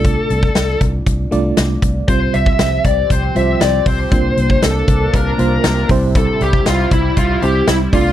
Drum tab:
HH |x-x-x-x-x-x-x-x-|x-x-x-x-x-x-x-o-|x-x-x-x-x-x-x-o-|x-x-x-x-x-x-x-o-|
SD |----o-------o---|----o-------o---|----o-------o---|----o-------o---|
BD |o--o--o-o-----o-|o--o--o-o-----o-|o--o--o-o-----o-|o--o--o-o-----o-|